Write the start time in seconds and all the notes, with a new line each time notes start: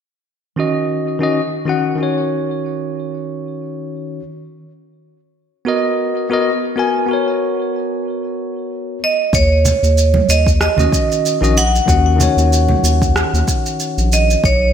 0.56 D#3 C#4 F#4 D#5
1.20 D#3 C#4 F#4 D#5
1.66 D#3 C#4 F#4 F#5
1.96 D#3 C#4
2.00 F#4 C#5
5.65 B3 F#4 A#4 D#5
6.30 B3 F#4 A#4 D#5
6.76 B3 F#4 A#4 G#5
7.06 B3 F#4
7.11 A#4 C#5
9.04 D#5
9.33 D#2 C#5, kick, shaker
9.65 low conga, shaker
9.83 D#2, shaker
9.98 shaker
10.14 high conga, low conga
10.29 D#2 D#5, shaker
10.47 kick, shaker
10.61 D#5, cross-stick, shaker
10.77 D#2 D#3 C#4 F#4 D#5, low conga, shaker
10.92 kick, shaker
11.12 shaker
11.26 shaker
11.41 A#1 D#3 C#4 F#4 D#5, shaker
11.57 F#5, shaker
11.75 shaker
11.86 D#2 D#3 C#4 F#4 F#5, kick, shaker
12.16 D#3 C#4
12.20 F#4 C#5, low conga, shaker
12.37 D#2, shaker
12.53 shaker
12.69 high conga, low conga
12.83 D#2, shaker
13.02 kick, shaker
13.16 cross-stick, shaker
13.33 D#2, shaker
13.48 kick, shaker
13.66 shaker
13.80 shaker
13.98 A#1, shaker
14.13 D#5, shaker
14.30 shaker
14.44 B1 C#5, kick, shaker